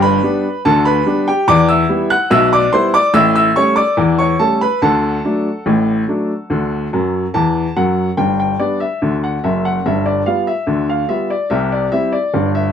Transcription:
Already playing: G1 G2
0.02 B4 B5
0.23 G3 B3 D4
0.65 D2 D3 A4 A5
0.85 B4 B5
1.06 G3 B3 D4
1.28 G4 G5
1.48 E2 E3 D5 D6
1.68 E5 E6
1.89 G3 B3 E4
2.10 F#5 F#6
2.30 B1 B2 E5 E6
2.53 D5 D6
2.73 G3 B3 E4 C5 C6
2.94 D5 D6
3.14 A1 A2 E5 E6
3.35 E5 E6
3.56 G3 A3 C#4 C#5 C#6
3.76 D5 D6
3.97 E2 E3
4.18 C#5 C#6
4.39 G3 A3 C#4 A4 A5
4.61 B4 B5
4.82 D2 D3 A4 F#5 A5
5.24 F#3 A3 D4
5.66 A1 A2
6.08 F#3 A3 D4
6.50 D2 D3
6.93 F#2 F#3
7.34 E2 E3 A5
7.76 F#2 F#3 F#5
8.17 G1 G2 G5
8.40 G5
8.59 G3 B3 D4 D5
8.80 E5
9.02 D2 D3
9.24 F#5
9.44 F#1 F#2 E5
9.65 F#5
9.86 G1 G2 E5
10.06 D5
10.26 G3 B3 F4 F5
10.47 E5
10.67 D2 D3
10.89 F5
11.09 G3 B3 F4 E5
11.30 D5
11.50 C2 C3 E5
11.72 D5
11.92 G3 C4 E4 E5
12.12 D5
12.34 G1 G2
12.55 E5

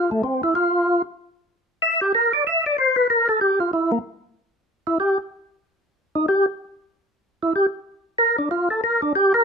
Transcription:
Already playing: F4
0.11 A3
0.23 C4
0.43 E4
0.55 F4
1.82 E5
2.01 G4
2.15 A#4
2.33 D5
2.47 E5
2.66 D5
2.78 C5
2.96 B4
3.10 A#4
3.29 A4
3.41 G4
3.60 F4
3.73 E4
3.92 A#3
4.87 E4
5.00 G4
6.15 D#4
6.28 G4
7.43 E4
7.56 G4
8.18 A#4
8.38 D4
8.51 F4
8.70 A4
8.84 A#4
9.02 D4
9.15 G4
9.34 A#4

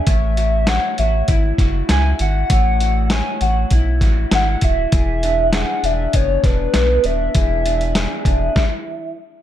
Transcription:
Already playing: E3 D4 G#4
0.07 A1 A3 C#5 E5, kick, closed hi-hat
0.37 F#4, closed hi-hat
0.67 C#5 F#5, snare, closed hi-hat
0.98 A1 F#4 E5, closed hi-hat
1.28 G#1 E4, kick, closed hi-hat
1.58 F#1 F#4, kick, snare, closed hi-hat
1.89 C#2 E4 G#5, snare, closed hi-hat
2.19 G#1 F#4 F#5, closed hi-hat
2.50 A1 A3 C#5 F#5, kick, closed hi-hat
2.80 F#4, closed hi-hat
3.10 C#5 G#5, snare, closed hi-hat
3.41 A1 F#4 F#5, closed hi-hat
3.71 B1 E4, kick, closed hi-hat
4.01 A1 F#4, kick, snare, closed hi-hat
4.31 G#1 E4 F#5, snare, closed hi-hat
4.61 D#1 F#4 E5, kick, closed hi-hat
4.92 E1 E3 G#4 E5, kick, closed hi-hat
5.23 D4, closed hi-hat
5.53 G#4 F#5, snare, closed hi-hat
5.83 E1 D4 E5, closed hi-hat
6.13 F#1 B3 C#5, kick, closed hi-hat
6.44 E1 D4 B4, kick, snare, closed hi-hat
6.74 B1 B3, snare, closed hi-hat
7.04 D#1 D4 E5, closed hi-hat
7.35 E1 E3 G#4, kick, closed hi-hat
7.66 D4, closed hi-hat
7.81 closed hi-hat
7.95 G#4, snare, closed hi-hat
8.25 E1 D4, kick, closed hi-hat
8.56 kick, snare

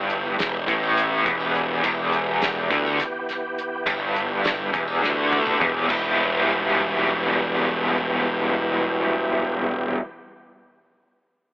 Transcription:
Already playing: G1 G2 E3 B3 G4
0.10 closed hi-hat
0.25 tambourine
0.38 E1 E2, snare, closed hi-hat, tambourine
0.68 A1 A2, kick, closed hi-hat, tambourine
0.83 tambourine
0.97 closed hi-hat
1.25 E1 E2, kick, closed hi-hat
1.41 tambourine
1.55 closed hi-hat
1.83 E1 E2, kick, closed hi-hat, tambourine
2.13 closed hi-hat
2.28 tambourine
2.42 snare, closed hi-hat, tambourine
2.57 tambourine
2.70 D2 D3, kick, closed hi-hat, tambourine
2.86 tambourine
3.00 snare, closed hi-hat
3.29 snare, closed hi-hat
3.58 closed hi-hat
3.86 G1 G2, kick, closed hi-hat, tambourine
4.01 tambourine
4.16 closed hi-hat
4.44 snare, closed hi-hat, tambourine
4.59 tambourine
4.73 E1 E2, kick, closed hi-hat
4.88 tambourine
5.02 D2 D3, snare
5.33 high tom
5.45 mid tom, tambourine
5.59 E1 E2, mid tom
5.87 E1 E2 B2 E3 G3 B3 E4 G4, kick, crash, tambourine

